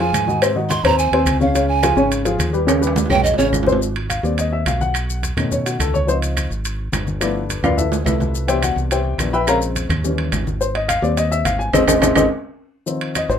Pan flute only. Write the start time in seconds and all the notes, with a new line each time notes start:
0.00 G#5
0.70 C6
0.85 A#5
0.99 G#5
1.41 F5
1.68 G#5
3.10 G5
3.23 D#5
3.38 C#5